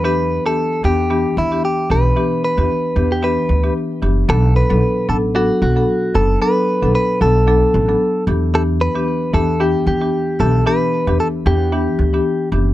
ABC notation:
X:1
M:4/4
L:1/16
Q:"Swing 16ths" 1/4=113
K:Bm
V:1 name="Clean electric guitar"
B3 A3 G4 E2 G2 B2- | B2 B4- B G B4 z4 | A2 B4 A2 F2 F4 A2 | B4 B2 A8 z2 |
A2 B4 A2 G2 G4 A2 | B4 A2 G8 z2 |]
V:2 name="Marimba"
[E,B,DG]3 [E,B,DG] z2 [E,B,DG] z [E,B,DG] z2 [E,B,DG] z2 [E,B,DG] z | [E,B,DG]3 [E,B,DG] z2 [E,B,DG] z [E,B,DG] z2 [E,B,DG] z2 [E,B,DG] z | [F,B,DA]3 [F,B,DA] z2 [F,B,DA] z [F,B,DA] z2 [F,B,DA] z2 [F,B,DA] z | [F,B,DA]3 [F,B,DA] z2 [F,B,DA] z [F,B,DA] z2 [F,B,DA] z2 [E,B,DG] z |
[E,B,DG]3 [E,B,DG] z2 [E,B,DG] z [E,B,DG] z2 [E,B,DG] z2 [E,B,DG] z | [E,B,DG]3 [E,B,DG] z2 [E,B,DG] z [E,B,DG] z2 [E,B,DG] z2 [E,B,DG] z |]
V:3 name="Upright bass" clef=bass
E,,4 z2 E,,4 E,,2 z2 B,,,2 | z3 E,, z2 E,,4 D,,2 z2 F,,,2 | B,,,3 B,,, z2 A,,,4 B,,,2 z2 F,,,2 | z3 B,,, z2 B,,,4 A,,,2 z2 E,,2- |
E,,4 z2 E,,4 E,,2 z2 B,,,2 | z3 E,, z2 E,,4 D,,2 z2 F,,,2 |]